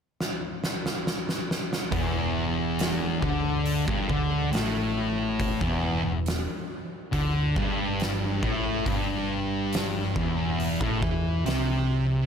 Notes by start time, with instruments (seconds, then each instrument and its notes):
0.21 snare
0.64 snare
0.86 snare
1.07 snare
1.29 snare
1.51 snare
1.73 snare
1.92 picked electric bass E1, distorted electric guitar E2, kick, open hi-hat
2.79 snare, open hi-hat
3.21 picked electric bass D2, distorted electric guitar D3, kick
3.66 open hi-hat
3.86 picked electric bass G1, distorted electric guitar G2, kick
4.08 picked electric bass D2, distorted electric guitar D3, kick
4.52 picked electric bass A1, distorted electric guitar A2, snare, open hi-hat
5.40 kick, open hi-hat
5.60 picked electric bass E1, distorted electric guitar E2, kick
6.03 picked electric bass E1, distorted electric guitar E2
6.26 snare, open hi-hat
7.12 picked electric bass D2, distorted electric guitar D3, kick, open hi-hat
7.56 picked electric bass G1, distorted electric guitar G2, kick
8.00 snare, open hi-hat
8.42 picked electric bass A1, distorted electric guitar A2, kick
8.85 picked electric bass G1, distorted electric guitar G2, kick, open hi-hat
9.73 snare, open hi-hat
10.16 picked electric bass E1, distorted electric guitar E2, kick
10.60 open hi-hat
10.81 picked electric bass A1, distorted electric guitar A2, kick
11.02 picked electric bass E2, distorted electric guitar E3, kick
11.45 picked electric bass C2, distorted electric guitar C3, snare, open hi-hat